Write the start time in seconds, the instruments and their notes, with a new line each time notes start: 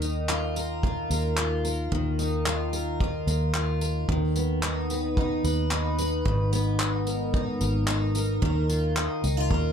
Already playing: fingered electric bass D#2, steel-string acoustic guitar D#3 D#4 A#4
0.02 steel-string acoustic guitar D#4, tambourine
0.29 steel-string acoustic guitar F4, clap
0.56 steel-string acoustic guitar A#4, tambourine
0.83 steel-string acoustic guitar F4, kick
1.10 fingered electric bass D#2, steel-string acoustic guitar A#4, tambourine
1.37 steel-string acoustic guitar F4, clap
1.65 steel-string acoustic guitar A#4, tambourine
1.92 fingered electric bass D#2, steel-string acoustic guitar D#3, kick
2.19 steel-string acoustic guitar D#4, tambourine
2.46 steel-string acoustic guitar F4, clap
2.73 steel-string acoustic guitar A#4, tambourine
3.00 steel-string acoustic guitar F4, kick
3.27 fingered electric bass D#2, steel-string acoustic guitar A#4, tambourine
3.55 steel-string acoustic guitar F4, clap
3.81 steel-string acoustic guitar A#4, tambourine
4.09 fingered electric bass D#2, steel-string acoustic guitar D#3, kick
4.36 steel-string acoustic guitar B3, tambourine
4.63 steel-string acoustic guitar D#4, clap
4.90 steel-string acoustic guitar B4, tambourine
5.17 steel-string acoustic guitar D#4, kick
5.44 fingered electric bass D#2, steel-string acoustic guitar B4, tambourine
5.71 steel-string acoustic guitar D#4, clap
5.98 steel-string acoustic guitar B4, tambourine
6.25 fingered electric bass G#1, steel-string acoustic guitar G#2, kick
6.53 steel-string acoustic guitar B3, tambourine
6.80 steel-string acoustic guitar D#4, clap
7.07 steel-string acoustic guitar A#4, tambourine
7.34 steel-string acoustic guitar D#4, kick
7.61 fingered electric bass G#1, steel-string acoustic guitar A#4, tambourine
7.88 steel-string acoustic guitar D#4, clap
8.15 steel-string acoustic guitar A#4, tambourine
8.42 fingered electric bass D#2, steel-string acoustic guitar D#3 A#4, kick
8.69 steel-string acoustic guitar F4, tambourine
8.97 steel-string acoustic guitar D#4, clap
9.24 fingered electric bass C#2, steel-string acoustic guitar D#4, tambourine
9.37 steel-string acoustic guitar F4
9.51 fingered electric bass D#2, steel-string acoustic guitar A#4, kick